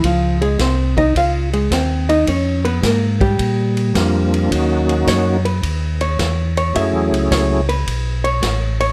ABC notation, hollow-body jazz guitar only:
X:1
M:4/4
L:1/8
Q:"Swing" 1/4=107
K:C#dor
V:1 name="Hollow-body jazz guitar"
[^E,^E] [G,G] [^B,^B] [Dd] [E^e] [G,G] [B,B] [Dd] | [Cc] [_C_c] [A,A] [=G,=G]4- [G,G] | z2 c B2 c2 c | e z c B2 c2 c |]